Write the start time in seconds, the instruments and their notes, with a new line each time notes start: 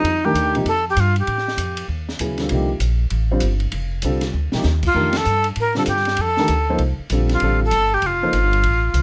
Already playing: flute D#4
0.04 upright bass F2, ride
0.25 grand piano D#3 A3 D4 G4 A#4, flute G4
0.34 upright bass D#2, hi-hat pedal, ride
0.55 grand piano C3 F3 A#3 D#4 G4, ride
0.65 upright bass F2, flute A4, ride
0.90 flute G4
0.97 upright bass G2, flute F4, hi-hat pedal, ride
1.16 flute G4, ride
1.27 upright bass A2, ride
1.38 snare
1.48 snare
1.57 upright bass F2, hi-hat pedal, ride
1.77 ride
1.88 upright bass D#2
2.09 snare
2.19 upright bass D2, grand piano C#3 F#3 B3 E4 G#4, hi-hat pedal, ride
2.38 grand piano D3 G3 C4 F4 A4, snare, ride
2.49 upright bass C2, grand piano C3 F3 A#3 D#4 G4, ride
2.80 upright bass A#1, hi-hat pedal, ride
3.10 upright bass A1, ride
3.31 grand piano D3 G3 C4 F4 C5
3.40 upright bass G1, hi-hat pedal, ride
3.60 ride
3.72 upright bass F1, ride
4.02 upright bass C2, grand piano D3 G3 C4 F4 A4, hi-hat pedal, ride
4.21 snare, ride
4.34 upright bass D2
4.52 grand piano C3 F3 A#3 D#4 G4, muted upright bass stroke, snare
4.63 upright bass D#2, snare, hi-hat pedal
4.83 flute F4, kick, crash
4.94 upright bass F2, grand piano D#3 A3 D4 G4 A#4
5.13 snare, ride
5.17 flute A4
5.25 upright bass G2, hi-hat pedal
5.44 ride
5.56 upright bass A2, ride
5.60 flute A#4
5.75 grand piano D3 G3 C4 F4 A4, flute A4, snare
5.86 upright bass G2, flute G4, hi-hat pedal, ride
5.96 snare
6.05 snare, ride
6.17 upright bass F2, ride
6.21 flute A4
6.37 grand piano D#3 A3 D4 G4 A#4, snare
6.48 upright bass D2, hi-hat pedal, ride
6.70 grand piano F3 A#3 D#4 A4 C5
6.78 upright bass C2, ride
6.99 muted upright bass stroke
7.10 upright bass A#1, grand piano D3 G3 C4 F4 A4, hi-hat pedal, ride
7.29 flute F4, snare, ride
7.40 upright bass A1, grand piano D3 G3 C4 F4 A4, ride
7.65 flute A4
7.71 upright bass G1, hi-hat pedal, ride
7.94 flute G4
8.02 upright bass F1, ride
8.06 flute F4
8.22 grand piano F3 A#3 D#4 A4 C5
8.33 upright bass G1, hi-hat pedal, ride
8.53 ride
8.63 upright bass A1, ride
8.94 upright bass C2, hi-hat pedal, ride